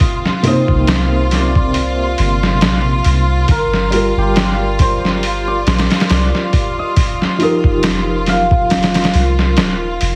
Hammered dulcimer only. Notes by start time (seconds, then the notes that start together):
Already playing: G4 C5 D#5
0.47 D#5
1.33 D5
3.51 A#4
4.18 G4
4.81 C5
5.47 D5
6.10 D5
6.79 D#5
7.42 D#5
8.29 F5